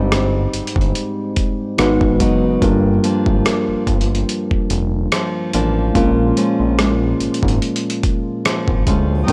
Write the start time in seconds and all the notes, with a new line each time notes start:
Already playing: G1 G#2 G3 G#3 C4 D#4 G4 C5 D#5
0.12 C4, cross-stick, closed hi-hat
0.53 G1, closed hi-hat
0.67 closed hi-hat
0.76 G1, kick
0.81 closed hi-hat
0.95 closed hi-hat
1.36 kick, closed hi-hat
1.78 G#1 G#2 G#3 B3 D#4 F#4 B4, cross-stick, closed hi-hat
2.01 G#1, kick
2.20 F#1 F#3 B3 D#4, kick, closed hi-hat
2.60 G1 G2 G3 A#3 D4 F4 A#4, kick, closed hi-hat
3.04 F3 A#3 D4, closed hi-hat
3.26 G#1, kick
3.45 A#3, cross-stick, closed hi-hat
3.68 G1
3.87 G1, kick, closed hi-hat
4.01 closed hi-hat
4.15 closed hi-hat
4.29 closed hi-hat
4.51 F1, kick
4.70 F1, closed hi-hat
5.12 F3, cross-stick, closed hi-hat
5.53 A1 F3 A#3 D4, closed hi-hat
5.93 A#1 A#2 G#3 A#3 C#4 F4 A#4, kick, closed hi-hat
6.37 F3 G#3 C#4, closed hi-hat
6.60 A#1
6.78 G#3, cross-stick, closed hi-hat
7.20 G#1, closed hi-hat
7.34 closed hi-hat
7.43 G#1, kick
7.48 closed hi-hat
7.62 closed hi-hat
7.76 closed hi-hat
7.90 closed hi-hat
8.03 kick, closed hi-hat
8.45 F3, cross-stick, closed hi-hat
8.68 G#1, kick
8.87 D2 F3 G#3 C#4, kick, closed hi-hat
9.27 D#2 D#3 G3 A#3 D4 A#4 G5 A#5 D#6, kick, closed hi-hat